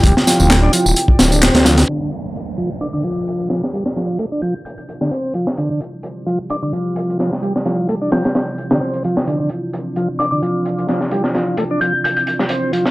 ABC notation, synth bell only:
X:1
M:4/4
L:1/16
Q:"Swing 16ths" 1/4=130
K:Dm
V:1 name="Synth bell"
z16 | z8 d' d' z6 | z6 g' z g' g' z6 | z8 d' d' z6 |
z6 g'6 z4 | z8 d' d' z6 | z6 g' z g' g' z6 |]